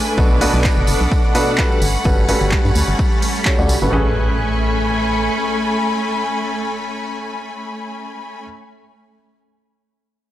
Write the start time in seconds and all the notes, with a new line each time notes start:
Already playing: A3 D4 A4 B4 G#5 B5 D6, downlifter
0.06 tambourine
0.18 B1 B2 D4 F#4 A4 B4, kick, tambourine
0.31 tambourine
0.41 B2 D4 F#4 A4 B4, open hi-hat, tambourine
0.54 B1, tambourine
0.64 kick, clap, tambourine
0.77 F#1 F#5, tambourine
0.87 F#1, open hi-hat, tambourine
1.01 B1, tambourine
1.12 kick, tambourine
1.24 tambourine
1.35 B2 D4 F#4 A4 B4, open hi-hat, tambourine
1.47 tambourine
1.58 G3 D4 F#4 A4 B4, kick, clap, tambourine
1.72 tambourine
1.82 G1 G3 C#4 F#5 A5 B5 C#6, open hi-hat, tambourine
1.95 tambourine
2.04 G1 G3 C#4 F#4 A4 B4, kick, tambourine
2.18 tambourine
2.29 G3 C#4 F#4 A4 B4, open hi-hat, tambourine
2.41 G1, tambourine
2.51 kick, clap, tambourine
2.65 G2, tambourine
2.75 D2, open hi-hat, tambourine
2.88 G1, tambourine
2.99 kick, tambourine
3.12 tambourine
3.22 open hi-hat, tambourine
3.35 tambourine
3.45 G3 C#4 F#4 A4 C#5, kick, clap, tambourine
3.59 D2 G3 C#4 F#4 A4 D5, tambourine
3.69 B1, open hi-hat, tambourine
3.82 G1 A2 C#4 F#4 A4 B4, tambourine
3.93 A1 A3 C#4 G#4 A4 B4 G#5 B5 C#6, impact
4.00 A3
4.07 G#5
4.14 B5